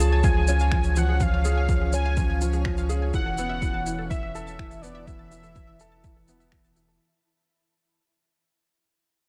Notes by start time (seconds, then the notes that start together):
Already playing: C#2 F3 C#4 C#5 F5 A5
0.00 G#4
0.12 G#5
0.23 F3 F4 G#5, kick, shaker
0.37 G#4
0.47 C#4 F4, shaker
0.59 F5, shaker
0.72 F3 F4, finger snap, kick
0.84 G#5, shaker
0.96 F3 F4 F#5, shaker
1.09 G#4
1.20 F3 F4 F5, kick, shaker
1.34 F5
1.45 F4 G#4, shaker
1.58 G#5
1.69 F3 F4, kick, shaker
1.82 G#4
1.93 C#4 F4 G#5, shaker
2.06 F5
2.17 F3 F4, kick, shaker
2.30 G#5
2.41 F3 F4, shaker
2.53 G#4, shaker
2.65 F3 F4, finger snap, kick
2.77 F5, shaker
2.89 F4 G#4, shaker
3.02 G#5
3.14 E1 E3 E4 F#5, kick, shaker
3.21 E5
3.26 A4
3.38 B3 E4, shaker
3.49 E5
3.62 E3 E4, kick, shaker
3.74 A5
3.80 A5
3.86 E3 E4, shaker
3.99 A4
4.10 E3 E4 E5, kick, shaker
4.23 E5
4.33 E4 A4 B5, shaker
4.47 A5, shaker
4.59 E3 E4, finger snap, kick
4.71 A4, shaker
4.82 B3 E4 D5, shaker
4.95 E5
5.06 E3 E4 E5, kick, shaker
5.19 A5
5.31 E3 E4, shaker
5.43 A4, shaker
5.55 E3 E4, kick, shaker
5.67 E5
5.80 E4 A4, shaker
5.92 A5
6.04 E3 E4, kick, shaker
6.17 A4
6.28 B3 E4, shaker
6.40 E5, shaker
6.52 E3 E4, finger snap, kick
6.64 A5, shaker
6.76 E3 E4, shaker
6.88 A4